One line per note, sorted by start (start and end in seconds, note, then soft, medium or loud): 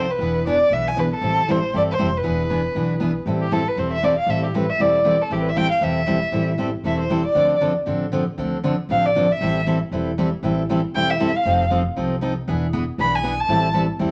0.00 0.12 C5 medium
0.11 0.46 B4 medium
0.19 0.60 E1 medium
0.19 0.38 E3 medium
0.19 0.39 B3 medium
0.19 0.39 D4 medium
0.19 0.39 G#4 medium
0.46 0.56 E3 medium
0.46 0.56 B3 medium
0.46 0.56 D4 medium
0.46 0.56 G#4 medium
0.46 0.75 D5 medium
0.70 1.11 B1 medium
0.70 0.89 E3 medium
0.70 0.89 B3 medium
0.70 0.89 D4 medium
0.70 0.89 G#4 medium
0.70 0.90 E5 medium
0.88 1.01 G#5 medium
0.96 1.06 E3 medium
0.96 1.06 B3 medium
0.96 1.07 D4 medium
0.96 1.07 G#4 medium
0.96 1.12 B4 medium
1.14 1.52 A4 medium
1.21 1.42 A1 medium
1.21 1.40 E3 medium
1.21 1.40 G3 medium
1.21 1.40 C4 medium
1.21 1.40 E4 medium
1.21 1.41 A4 medium
1.48 1.69 A1 medium
1.48 1.58 E3 medium
1.48 1.58 G3 medium
1.48 1.58 C4 medium
1.48 1.58 E4 medium
1.48 1.58 A4 medium
1.48 1.74 C5 medium
1.73 1.95 G1 medium
1.73 1.91 E3 medium
1.73 1.91 G3 medium
1.73 1.91 C4 medium
1.73 1.92 E4 medium
1.73 1.92 A4 medium
1.73 1.82 D5 medium
1.91 2.19 C5 medium
1.98 2.20 F1 medium
1.98 2.08 E3 medium
1.98 2.08 G3 medium
1.98 2.09 C4 medium
1.98 2.09 E4 medium
1.98 2.09 A4 medium
2.18 3.17 B4 medium
2.23 2.65 E1 medium
2.23 2.42 E3 medium
2.23 2.42 B3 medium
2.23 2.42 D4 medium
2.23 2.42 G#4 medium
2.49 2.59 E3 medium
2.49 2.60 B3 medium
2.49 2.60 D4 medium
2.49 2.60 G#4 medium
2.75 3.16 B1 medium
2.75 2.93 E3 medium
2.75 2.93 B3 medium
2.75 2.94 D4 medium
2.75 2.94 G#4 medium
3.00 3.10 E3 medium
3.00 3.10 B3 medium
3.00 3.10 D4 medium
3.00 3.11 G#4 medium
3.26 3.67 A1 medium
3.26 3.44 E3 medium
3.26 3.44 G3 medium
3.26 3.45 C4 medium
3.26 3.45 E4 medium
3.26 3.45 A4 medium
3.42 3.54 G4 medium
3.51 3.61 E3 medium
3.51 3.61 G3 medium
3.51 3.62 C4 medium
3.51 3.62 E4 medium
3.51 3.62 A4 medium
3.51 3.70 A4 medium
3.68 3.80 B4 medium
3.76 4.17 E1 medium
3.76 3.95 E3 medium
3.76 3.95 G3 medium
3.76 3.95 C4 medium
3.76 3.95 E4 medium
3.76 3.96 A4 medium
3.76 3.92 C5 medium
3.93 4.06 E5 medium
4.02 4.13 E3 medium
4.02 4.13 G3 medium
4.02 4.13 C4 medium
4.02 4.13 E4 medium
4.02 4.13 A4 medium
4.02 4.18 D5 medium
4.19 4.31 F5 medium
4.26 4.68 A1 medium
4.26 4.46 E3 medium
4.26 4.46 G3 medium
4.26 4.46 C4 medium
4.26 4.46 E4 medium
4.26 4.46 A4 medium
4.26 4.43 E5 medium
4.45 4.57 G4 soft
4.54 4.64 E3 medium
4.54 4.64 G3 medium
4.54 4.64 C4 medium
4.54 4.64 E4 medium
4.54 4.65 A4 medium
4.54 4.71 B4 medium
4.70 4.83 E5 medium
4.79 5.20 E1 medium
4.79 4.97 E3 medium
4.79 4.98 G3 medium
4.79 4.98 C4 medium
4.79 4.98 E4 medium
4.79 4.98 A4 medium
4.79 5.23 D5 medium
5.04 5.15 E3 medium
5.04 5.15 G3 medium
5.04 5.15 C4 medium
5.04 5.15 E4 loud
5.04 5.15 A4 medium
5.21 5.34 A4 medium
5.30 5.71 A1 medium
5.30 5.49 E3 medium
5.30 5.49 G3 medium
5.30 5.49 C4 medium
5.30 5.49 E4 medium
5.30 5.42 G4 medium
5.30 5.49 A4 medium
5.41 5.50 B4 medium
5.49 5.58 E5 medium
5.56 5.66 E3 medium
5.56 5.66 G3 medium
5.56 5.66 C4 medium
5.56 5.66 E4 medium
5.56 5.67 A4 medium
5.56 5.71 G5 loud
5.71 5.85 F5 medium
5.81 6.22 E1 medium
5.81 5.99 E3 medium
5.81 6.00 G3 medium
5.81 6.00 C4 medium
5.81 6.00 E4 medium
5.81 6.00 A4 medium
5.81 6.59 E5 medium
6.06 6.17 E3 medium
6.06 6.17 G3 medium
6.06 6.17 C4 medium
6.06 6.17 E4 medium
6.06 6.18 A4 medium
6.32 6.73 A1 medium
6.32 6.51 E3 medium
6.32 6.51 G3 medium
6.32 6.51 C4 medium
6.32 6.51 E4 medium
6.32 6.51 A4 medium
6.58 6.68 E3 medium
6.58 6.69 G3 medium
6.58 6.69 C4 medium
6.58 6.69 E4 medium
6.58 6.69 A4 medium
6.84 7.25 E1 medium
6.84 7.02 E3 medium
6.84 7.03 G3 medium
6.84 7.03 C4 medium
6.84 7.03 E4 medium
6.84 7.03 A4 medium
6.84 6.99 E5 medium
7.00 7.23 C5 medium
7.10 7.20 E3 medium
7.10 7.20 G3 medium
7.10 7.20 C4 medium
7.10 7.21 E4 medium
7.10 7.21 A4 medium
7.26 7.60 D5 medium
7.35 7.76 D2 medium
7.35 7.53 D3 medium
7.35 7.53 F3 medium
7.35 7.54 C4 medium
7.35 7.54 D4 medium
7.35 7.54 A4 medium
7.60 7.71 D3 medium
7.60 7.71 F3 medium
7.60 7.71 C4 medium
7.60 7.71 D4 medium
7.60 7.72 A4 medium
7.86 8.28 A1 medium
7.86 8.05 D3 medium
7.86 8.05 F3 medium
7.86 8.05 C4 medium
7.86 8.05 D4 medium
7.86 8.05 A4 medium
8.12 8.22 D3 medium
8.12 8.23 F3 medium
8.12 8.23 C4 medium
8.12 8.23 D4 medium
8.12 8.23 A4 medium
8.38 8.79 D2 medium
8.38 8.56 D3 medium
8.38 8.56 F3 medium
8.38 8.57 C4 medium
8.38 8.57 D4 medium
8.38 8.57 A4 medium
8.63 8.74 D3 medium
8.63 8.74 F3 medium
8.63 8.74 C4 medium
8.63 8.74 D4 medium
8.63 8.74 A4 medium
8.89 9.30 A1 medium
8.89 9.08 D3 medium
8.89 9.08 F3 medium
8.89 9.08 C4 medium
8.89 9.08 D4 medium
8.89 9.08 A4 medium
8.89 9.07 F5 medium
9.06 9.34 D5 medium
9.15 9.25 D3 medium
9.15 9.25 F3 medium
9.15 9.26 C4 medium
9.15 9.26 D4 medium
9.15 9.26 A4 medium
9.32 9.68 E5 medium
9.41 9.82 A1 medium
9.41 9.59 E3 medium
9.41 9.59 G3 medium
9.41 9.60 C4 medium
9.41 9.60 E4 medium
9.41 9.60 A4 medium
9.66 9.77 E3 medium
9.66 9.77 G3 medium
9.66 9.77 C4 medium
9.66 9.77 E4 medium
9.66 9.77 A4 medium
9.91 10.33 E1 medium
9.91 10.10 E3 medium
9.91 10.10 G3 medium
9.91 10.10 C4 medium
9.91 10.11 E4 medium
9.91 10.11 A4 medium
10.18 10.28 E3 medium
10.18 10.28 G3 medium
10.18 10.28 C4 medium
10.18 10.28 E4 medium
10.18 10.29 A4 medium
10.43 10.84 A1 medium
10.43 10.61 E3 medium
10.43 10.62 G3 medium
10.43 10.62 C4 medium
10.43 10.62 E4 medium
10.43 10.62 A4 medium
10.69 10.79 E3 medium
10.69 10.79 G3 medium
10.69 10.79 C4 medium
10.69 10.80 E4 medium
10.69 10.80 A4 medium
10.94 11.35 E1 medium
10.94 11.13 E3 medium
10.94 11.13 G3 medium
10.94 11.13 C4 medium
10.94 11.13 E4 medium
10.94 11.13 A4 medium
10.94 11.12 G5 loud
11.10 11.38 E5 medium
11.19 11.30 E3 medium
11.19 11.30 G3 medium
11.19 11.30 C4 medium
11.19 11.30 E4 medium
11.19 11.30 A4 medium
11.36 11.72 F5 medium
11.45 11.86 F1 medium
11.45 11.63 F3 medium
11.45 11.64 C4 medium
11.45 11.64 D#4 medium
11.45 11.64 A4 medium
11.70 11.81 F3 medium
11.70 11.81 C4 medium
11.70 11.81 D#4 medium
11.70 11.81 A4 medium
11.96 12.37 C2 medium
11.96 12.14 F3 medium
11.96 12.14 C4 medium
11.96 12.15 D#4 medium
11.96 12.15 A4 medium
12.21 12.32 F3 medium
12.21 12.32 C4 medium
12.21 12.32 D#4 medium
12.21 12.32 A4 medium
12.48 12.88 E1 medium
12.48 12.65 E3 medium
12.48 12.66 B3 medium
12.48 12.66 D4 medium
12.48 12.66 G#4 medium
12.73 12.83 E3 medium
12.73 12.83 B3 medium
12.73 12.83 D4 medium
12.73 12.83 G#4 medium
12.98 13.39 B1 medium
12.98 13.16 E3 medium
12.98 13.16 B3 medium
12.98 13.17 D4 medium
12.98 13.17 G#4 medium
12.98 13.17 B5 medium
13.15 13.42 G#5 medium
13.23 13.33 E3 medium
13.23 13.34 B3 medium
13.23 13.34 D4 medium
13.23 13.34 G#4 medium
13.40 13.75 A5 loud
13.49 13.89 A1 medium
13.49 13.67 E3 medium
13.49 13.67 G3 medium
13.49 13.67 C4 medium
13.49 13.67 E4 medium
13.49 13.67 A4 medium
13.74 13.84 E3 medium
13.74 13.84 G3 medium
13.74 13.84 C4 medium
13.74 13.84 E4 medium
13.74 13.84 A4 medium
13.99 14.11 E2 medium
13.99 14.11 E3 medium
13.99 14.11 G3 medium
13.99 14.11 C4 medium
13.99 14.11 E4 medium
13.99 14.11 A4 medium